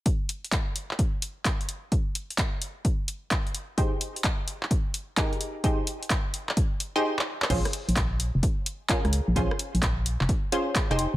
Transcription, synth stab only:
X:1
M:4/4
L:1/16
Q:"Swing 16ths" 1/4=129
K:Ebm
V:1 name="Synth stab"
z16 | z16 | [E=GA=c] z8 z3 [EGAB]4 | [E=GA=c] z8 z2 [EGAc] z4 |
[DFA=c] z8 z3 [DFAB]4 | [DFA=c] z8 z [DFAc]3 [E=GAc] z2 |]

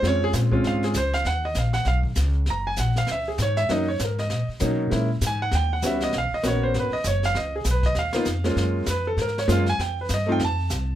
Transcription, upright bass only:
X:1
M:4/4
L:1/8
Q:"Swing" 1/4=197
K:Bbm
V:1 name="Upright bass" clef=bass
F,,2 B,,2 A,,2 D,,2 | [K:Ebm] E,,2 B,,,2 C,,2 D,,2 | G,,,2 B,,,2 D,,2 A,,2 | ^F,,2 A,,2 ^A,, z =B,,2 |
B,,2 A,,2 E,,2 D,,2 | C,, z B,,,2 A,,, z G,,,2 | D,,2 C,,2 E,,2 F,,2 | G,,2 F,,2 A,,2 G,,2 |
F,,2 =G,,2 F,,2 =C,,2 |]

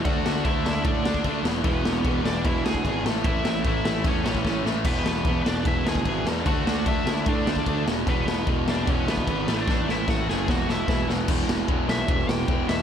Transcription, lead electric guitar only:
X:1
M:4/4
L:1/16
Q:1/4=150
K:Emix
V:1 name="Lead electric guitar"
[Ff]4 [Ee]4 [Dd]6 z2 | [B,B]6 [Dd]2 [Ee]2 [Gg]4 z2 | [Ee]4 [Ee]4 [Cc]6 z2 | [B,B]6 [Dd]2 [Ee]2 [Gg]4 z2 |
[Ff]4 [Ee]4 [Dd]6 z2 | [B,B]4 z2 [Dd]2 [Cc]2 [B,B]4- [B,B] [Dd]- | [Dd]2 [Ee]2 [Ff]2 [Gg]2 [Ff]2 [Ee]4 z2 | z6 e2 e2 =g4 e2 |]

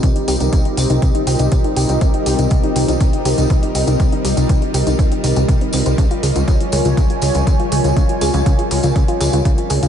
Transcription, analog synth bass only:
X:1
M:4/4
L:1/16
Q:1/4=121
K:Cphr
V:1 name="Analog synth bass" clef=bass
C,, z C,, C,, C,, z C,, C,, C,, z C,, C,, C,, z C,, C,, | C,, z C,, C,, C,, z C,, C,, C,, z C,, C,, C,, z C,, C,, | C,, z C,, C,, C,, z C,, C,, C,, z C,, C,, C,, z C,, C,, | D,, z D,, D,, D,, z D,, D,, D,, z D,, D,, D,, z D,, D,, |
D,, z D,, D,, D,, z D,, D,, D,, z D,, D,, D,, z D,, D,, |]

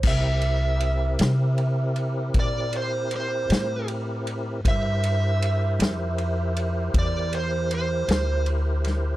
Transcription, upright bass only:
X:1
M:12/8
L:1/8
Q:3/8=52
K:Cmix
V:1 name="Upright bass" clef=bass
C,,3 C,3 B,,3 A,,3 | G,,3 F,,3 E,,3 D,,3 |]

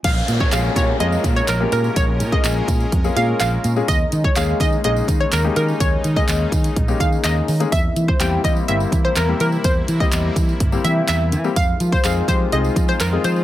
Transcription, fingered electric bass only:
X:1
M:4/4
L:1/8
Q:1/4=125
K:Bbdor
V:1 name="Fingered electric bass" clef=bass
B,,, B,, B,,, B,, F,, B,, B,,, B,, | B,,, B,, B,,, B,, F,, B,, B,,, B,, | E,, E, E,, E, B,,, E, E,, E, | E,, E, E,, E, B,,, E, E,, E, |
=E,, =E, E,, E, G,,, E, E,, E, | =E,, =E, E,, E, G,,, E, E,, E, | F,, F, F,, F, C,, F, F,, F, |]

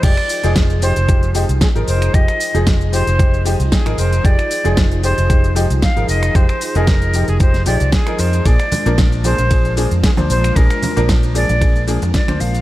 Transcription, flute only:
X:1
M:4/4
L:1/16
Q:"Swing 16ths" 1/4=114
K:Fdor
V:1 name="Flute"
d4 z2 c4 z2 A2 c2 | e4 z2 c4 z2 A2 c2 | d4 z2 c4 z2 f2 e2 | c3 B4 A c2 d2 A2 c2 |
d4 z2 c4 z2 A2 c2 | B4 z2 d4 z2 d2 f2 |]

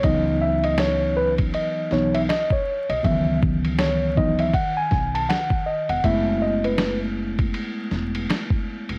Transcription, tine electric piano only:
X:1
M:4/4
L:1/16
Q:"Swing 16ths" 1/4=80
K:C#m
V:1 name="Tine electric piano"
d2 e d c2 B2 d2 c e d c2 d | e2 z2 c2 d e f g2 a f2 d f | e2 d B2 z8 z3 |]
V:2 name="Tine electric piano" clef=bass
[E,F,B,D]8- [E,F,B,D]2 [E,F,B,D]2 z4 | [D,E,F,B,]6 [E,F,B,D]2 z8 | [G,A,B,E]16 |]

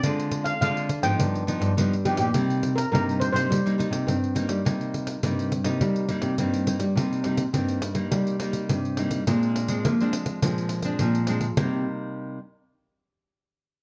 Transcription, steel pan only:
X:1
M:4/4
L:1/16
Q:1/4=104
K:Cm
V:1 name="Steel pan"
d3 f f3 g3 z4 G G- | G3 B B2 c c8- c- | c12 z4 | z16 |
z16 | z16 |]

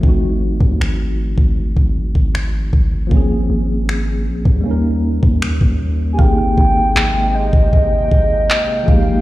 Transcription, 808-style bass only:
X:1
M:4/4
L:1/16
Q:1/4=78
K:Fm
V:1 name="808-style bass" clef=bass
A,,,3 E,, A,,,3 A,,,2 A,,,2 A,,,3 A,,,2 | A,,,2 A,,,4 B,,, E,,4 E,,2 E,,3 | A,,,2 A,,,2 A,,,3 A,,,3 A,,,2 z2 A,,,2 |]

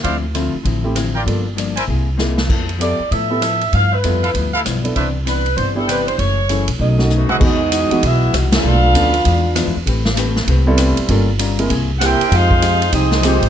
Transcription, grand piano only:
X:1
M:4/4
L:1/8
Q:"Swing" 1/4=195
K:Ephr
V:1 name="Grand piano"
z2 [A,CEF] z2 [A,CEG] z2 | [_B,DFA] z4 z [B,^DE^G] z | z2 [B,EGA] z2 [B,EGA] z2 | z2 [B,EFA] z4 [B,DEA] |
z4 z [B,DEG]3 | z2 [A,^CE_A] z2 [=A,C^D^F] z2 | [E,^G,B,^D^F] z2 [E,G,B,DF] z4 | z2 [F,B,_D=DA] z3 [F,B,DEB] z |
z4 z [G,B,CEA]3 | [G,_B,_DFA] z2 [_A,B,CE_B] z4 | z6 [_A,C_EFG]2 |]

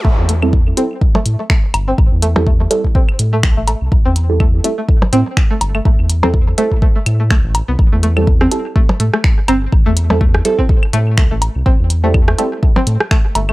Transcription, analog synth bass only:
X:1
M:4/4
L:1/16
Q:"Swing 16ths" 1/4=124
K:Am
V:1 name="Analog synth bass" clef=bass
A,,, E,,4- E,, z4 A,, z3 G,,,2 | A,,, E,,4- E,, z4 A,,2 C,, A,,,2 C,, | A,,, E,,4- E,, z4 A,, z3 G,,,2 | A,,, E,,4- E,, z4 A,,2 C,, A,,,2 C,, |
A,,, E,,4- E,, z4 A,, z3 G,,,2 | A,,, E,,4- E,, z4 A,,2 C,, A,,,2 C,, | A,,, E,,4- E,, z4 A,, z3 G,,,2 |]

